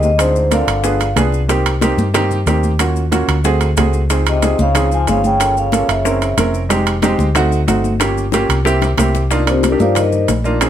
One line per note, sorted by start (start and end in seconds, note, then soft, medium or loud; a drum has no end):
0.00 0.62 D2 medium
0.00 0.10 C3 medium
0.00 0.11 D#5 medium
0.00 high bongo soft
0.00 high conga medium
0.00 maracas soft
0.18 0.50 G#2 medium
0.18 0.41 C4 medium
0.18 0.42 D4 medium
0.18 0.42 F4 medium
0.18 0.42 G#4 medium
0.18 0.50 C5 loud
0.18 high bongo medium
0.18 high timbale medium
0.18 maracas medium
0.36 high conga soft
0.36 maracas soft
0.51 1.14 D3 medium
0.51 0.74 C4 medium
0.51 0.74 D4 medium
0.51 0.74 F4 medium
0.51 0.74 A#4 medium
0.51 1.14 F5 medium
0.51 high bongo medium
0.51 high conga medium
0.51 high timbale medium
0.51 maracas medium
0.67 1.13 G1 medium
0.67 high bongo soft
0.67 high conga soft
0.67 high timbale medium
0.67 maracas soft
0.84 1.07 B3 medium
0.84 1.07 D4 medium
0.84 1.07 F4 medium
0.84 1.07 G#4 medium
0.84 high bongo medium
0.84 high conga soft
0.84 maracas medium
1.00 high bongo soft
1.00 high conga soft
1.00 high timbale medium
1.00 maracas soft
1.16 1.92 C2 medium
1.16 1.39 B3 medium
1.16 1.39 D4 medium
1.16 1.39 F4 medium
1.16 1.40 G#4 loud
1.16 high bongo soft
1.16 low bongo medium
1.16 high conga medium
1.16 high timbale medium
1.16 low timbale medium
1.16 maracas medium
1.32 high bongo soft
1.32 high conga soft
1.32 maracas soft
1.48 1.72 A#3 medium
1.48 1.72 C4 medium
1.48 1.72 D#4 medium
1.48 1.73 G4 medium
1.48 high bongo medium
1.48 high conga soft
1.48 high timbale medium
1.48 maracas medium
1.66 high conga soft
1.66 high timbale loud
1.66 maracas soft
1.81 2.04 A#3 medium
1.81 2.05 C4 medium
1.81 2.05 D#4 medium
1.81 2.05 G4 loud
1.81 high bongo medium
1.81 high conga medium
1.81 high timbale medium
1.81 maracas medium
1.97 2.43 G2 medium
1.97 high bongo soft
1.97 high conga medium
1.97 maracas soft
2.14 2.37 A#3 loud
2.14 2.37 C4 medium
2.14 2.37 D#4 medium
2.14 2.38 G4 loud
2.14 high bongo medium
2.14 high conga soft
2.14 low conga medium
2.14 high timbale medium
2.14 maracas medium
2.31 high bongo soft
2.31 high conga soft
2.31 low conga medium
2.31 maracas soft
2.46 3.22 D#2 medium
2.46 2.70 A#3 medium
2.46 2.70 C4 medium
2.46 2.70 D#4 medium
2.46 2.70 G4 loud
2.46 high bongo soft
2.46 low bongo medium
2.46 high conga medium
2.46 high timbale medium
2.46 maracas medium
2.63 high bongo soft
2.63 high conga medium
2.63 maracas soft
2.79 3.02 A#3 medium
2.79 3.02 C#4 medium
2.79 3.03 F4 medium
2.79 3.03 F#4 medium
2.79 high bongo medium
2.79 high conga soft
2.79 high timbale medium
2.79 maracas medium
2.96 high conga soft
2.96 maracas soft
3.11 3.35 A#3 medium
3.11 3.35 C#4 medium
3.11 3.35 F4 medium
3.11 3.35 F#4 medium
3.11 high bongo medium
3.11 high conga medium
3.11 high timbale medium
3.11 maracas medium
3.28 3.74 D2 medium
3.28 high bongo soft
3.28 high conga soft
3.28 high timbale medium
3.28 maracas soft
3.44 3.67 A3 medium
3.44 3.68 C4 medium
3.44 3.68 F#4 medium
3.44 3.68 G#4 loud
3.44 high bongo medium
3.44 high conga soft
3.44 maracas medium
3.61 high bongo soft
3.61 high conga soft
3.61 high timbale medium
3.61 maracas soft
3.77 4.53 C#2 medium
3.77 4.00 A3 medium
3.77 4.00 C4 medium
3.77 4.00 F#4 medium
3.77 4.00 G#4 medium
3.77 high bongo soft
3.77 low bongo medium
3.77 high conga medium
3.77 high timbale medium
3.77 low timbale medium
3.77 maracas medium
3.93 high bongo soft
3.93 high conga soft
3.93 maracas soft
4.10 4.33 C4 medium
4.10 4.33 D#4 medium
4.10 4.33 F4 medium
4.10 4.33 G#4 medium
4.10 high bongo medium
4.10 high conga soft
4.10 high timbale medium
4.10 maracas medium
4.26 4.58 C3 medium
4.26 4.61 D#5 medium
4.26 high conga soft
4.26 high timbale medium
4.26 maracas soft
4.42 4.65 C4 medium
4.42 4.66 D#4 medium
4.42 4.66 F4 medium
4.42 4.66 G#4 medium
4.42 high bongo medium
4.42 high conga medium
4.42 high timbale medium
4.42 maracas medium
4.59 5.04 C#2 medium
4.59 4.90 C#3 medium
4.59 4.94 F5 loud
4.59 high bongo soft
4.59 high conga medium
4.59 maracas soft
4.75 4.98 C4 medium
4.75 4.98 D#4 medium
4.75 4.98 F4 medium
4.75 4.99 G#4 medium
4.75 high bongo medium
4.75 high conga soft
4.75 low conga medium
4.75 high timbale medium
4.75 maracas medium
4.92 5.08 F3 medium
4.92 5.10 G#5 loud
4.92 high bongo soft
4.92 high conga soft
4.92 maracas soft
5.07 5.83 G1 loud
5.07 5.24 C#3 medium
5.07 5.30 C4 medium
5.07 5.31 D#4 medium
5.07 5.31 F4 medium
5.07 5.31 G#4 medium
5.07 5.24 F5 loud
5.07 high bongo soft
5.07 low bongo medium
5.07 high conga medium
5.07 high timbale medium
5.07 maracas medium
5.24 5.55 C#3 medium
5.24 5.55 G5 loud
5.24 high bongo soft
5.24 high conga medium
5.24 maracas soft
5.40 5.63 A#3 medium
5.40 5.63 C#4 medium
5.40 5.63 F4 medium
5.40 5.64 A4 medium
5.40 high bongo medium
5.40 high timbale medium
5.40 maracas medium
5.57 5.73 C#3 medium
5.57 5.72 F5 medium
5.57 high conga soft
5.57 maracas soft
5.72 5.89 C#3 medium
5.72 5.95 A#3 medium
5.72 5.96 C#4 medium
5.72 5.96 F4 medium
5.72 5.96 A4 medium
5.72 5.90 F5 medium
5.72 high bongo medium
5.72 high conga medium
5.72 high timbale medium
5.72 maracas medium
5.89 6.34 F#1 medium
5.89 6.51 C#3 medium
5.89 6.50 E5 medium
5.89 high bongo soft
5.89 high conga soft
5.89 high timbale medium
5.89 maracas soft
6.05 6.28 C4 medium
6.05 6.28 C#4 medium
6.05 6.28 E4 medium
6.05 6.29 A#4 medium
6.05 high bongo medium
6.05 high conga soft
6.05 maracas medium
6.22 high bongo soft
6.22 high conga soft
6.22 high timbale medium
6.22 maracas soft
6.37 7.13 F1 medium
6.37 6.61 C4 medium
6.37 6.61 C#4 medium
6.37 6.61 E4 medium
6.37 6.61 A#4 loud
6.37 high bongo soft
6.37 low bongo medium
6.37 high conga medium
6.37 high timbale medium
6.37 maracas medium
6.54 high bongo soft
6.54 high conga soft
6.54 maracas soft
6.69 6.93 G#3 medium
6.69 6.93 C4 medium
6.69 6.93 D#4 medium
6.69 6.93 G4 loud
6.69 high bongo medium
6.69 high conga soft
6.69 high timbale medium
6.69 maracas medium
6.86 high conga soft
6.86 high timbale medium
6.86 maracas soft
7.02 7.26 G#3 medium
7.02 7.26 C4 medium
7.02 7.26 D#4 medium
7.02 7.26 G4 loud
7.02 high bongo medium
7.02 high conga loud
7.02 high timbale medium
7.02 maracas medium
7.19 7.64 D2 medium
7.19 high bongo soft
7.19 high conga loud
7.19 maracas soft
7.35 7.58 A3 loud
7.35 7.58 C4 medium
7.35 7.59 D#4 medium
7.35 7.59 F#4 loud
7.35 high bongo medium
7.35 high conga soft
7.35 low conga medium
7.35 high timbale medium
7.35 maracas medium
7.51 high bongo soft
7.51 high conga soft
7.51 maracas soft
7.67 8.44 G1 medium
7.67 7.90 A3 medium
7.67 7.91 C4 medium
7.67 7.91 D#4 medium
7.67 7.91 F#4 medium
7.67 high bongo soft
7.67 low bongo medium
7.67 high conga medium
7.67 high timbale medium
7.67 maracas medium
7.84 high bongo soft
7.84 high conga medium
7.84 maracas soft
8.00 8.23 A#3 medium
8.00 8.24 C#4 medium
8.00 8.24 F4 medium
8.00 8.24 G4 medium
8.00 high bongo medium
8.00 high timbale medium
8.00 maracas medium
8.18 high conga soft
8.18 maracas soft
8.32 8.56 A#3 medium
8.32 8.56 C#4 medium
8.32 8.56 F4 medium
8.32 8.57 G4 loud
8.32 high bongo medium
8.32 high conga medium
8.32 high timbale medium
8.32 maracas medium
8.49 8.95 C2 medium
8.49 high bongo soft
8.49 high conga soft
8.49 high timbale loud
8.49 maracas soft
8.65 8.88 A#3 loud
8.65 8.88 C4 medium
8.65 8.89 E4 medium
8.65 8.89 G4 loud
8.65 high bongo medium
8.65 high conga soft
8.65 maracas medium
8.82 high bongo medium
8.82 high conga soft
8.82 high timbale medium
8.82 maracas soft
8.97 9.74 C2 medium
8.97 9.21 A#3 medium
8.97 9.21 C4 medium
8.97 9.21 E4 medium
8.97 9.21 G4 medium
8.97 high bongo medium
8.97 high conga medium
8.97 high timbale medium
8.97 low timbale medium
8.97 maracas medium
9.15 low bongo medium
9.15 maracas soft
9.30 9.42 A#3 medium
9.30 9.42 D4 medium
9.30 9.42 D#4 medium
9.30 9.43 F4 loud
9.30 high bongo medium
9.30 high conga soft
9.30 high timbale medium
9.30 maracas medium
9.46 9.64 A#3 medium
9.46 9.64 C4 medium
9.46 9.64 D4 medium
9.46 9.64 D#4 medium
9.46 9.64 F4 medium
9.46 9.64 G4 medium
9.46 9.64 C5 medium
9.46 high conga soft
9.46 high timbale medium
9.46 maracas soft
9.63 9.80 D4 medium
9.63 9.80 G4 medium
9.63 9.80 A#4 medium
9.63 9.80 D5 medium
9.63 high bongo medium
9.63 high conga medium
9.63 high timbale medium
9.63 maracas medium
9.71 9.77 A#3 medium
9.71 9.77 D4 medium
9.71 9.77 D#4 medium
9.71 9.78 G4 medium
9.79 10.25 G2 medium
9.79 10.25 A#3 medium
9.79 10.25 D4 medium
9.79 10.26 D#4 medium
9.79 9.97 F4 medium
9.79 10.26 G4 medium
9.79 9.97 C5 medium
9.79 9.97 D5 medium
9.79 9.96 F5 loud
9.79 high bongo soft
9.79 high conga medium
9.79 maracas soft
9.95 10.28 D#4 medium
9.95 10.28 A#4 medium
9.95 10.28 C5 medium
9.95 10.28 D#5 medium
9.95 high bongo medium
9.95 high conga soft
9.95 low conga medium
9.95 high timbale medium
9.95 maracas medium
10.12 high bongo soft
10.12 high conga soft
10.12 low conga medium
10.12 maracas soft
10.28 10.70 A#1 medium
10.28 high bongo soft
10.28 low bongo medium
10.28 high conga medium
10.28 high timbale medium
10.28 low timbale medium
10.28 maracas medium
10.44 10.61 A#3 medium
10.44 10.61 D4 medium
10.44 10.61 D#4 medium
10.44 10.60 F4 loud
10.44 high bongo soft
10.44 high conga medium
10.44 maracas soft
10.61 10.70 C4 medium
10.61 10.70 C#4 medium
10.61 10.70 F4 medium
10.61 10.70 G#4 medium
10.61 high bongo medium
10.61 high conga soft
10.61 high timbale medium
10.61 maracas medium